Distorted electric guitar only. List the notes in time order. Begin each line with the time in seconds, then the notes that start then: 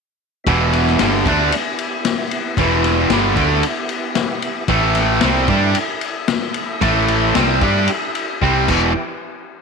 0.47 E2 B2 E3
0.99 G2 D3 G3
1.27 D3 A3 D4
2.58 E2 B2 E3
3.12 G2 D3 G3
3.37 D3 A3 D4
4.69 A2 E3 A3
5.22 C3 G3 C4
5.49 G3 D4 G4
6.82 A2 E3 A3
7.36 C3 G3 C4
7.62 G3 D4 G4
8.42 C3 G3 C4
8.69 E2 B2 E3